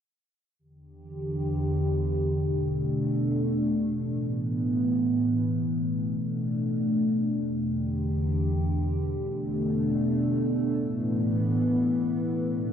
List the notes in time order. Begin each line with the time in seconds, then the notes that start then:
0.59 E2 D3 G4
2.27 B2 A3 D4
3.95 A2 E3 B3
5.63 B2 A3 D4
7.30 E2 D3 G4
8.98 B2 A3 D4
10.66 A2 E3 B3
12.34 B2 A3 D4